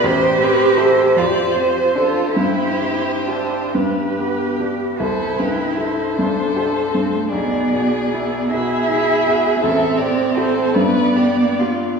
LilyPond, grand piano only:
\new Staff \with { instrumentName = "Grand piano" } { \time 6/8 \key c \major \tempo 4. = 51 a,,8 c'8 <e' a'>8 f,8 c'8 <d' a'>8 | g,8 c'8 <e' g'>8 g,8 b8 <d' g'>8 | c,8 g,8 e'8 g,8 g'8 g,8 | b,,8 b,8 e'8 b,8 gis'8 b,8 |
a,,8 c'8 <e' g'>8 g,8 d'8 <f' g'>8 | }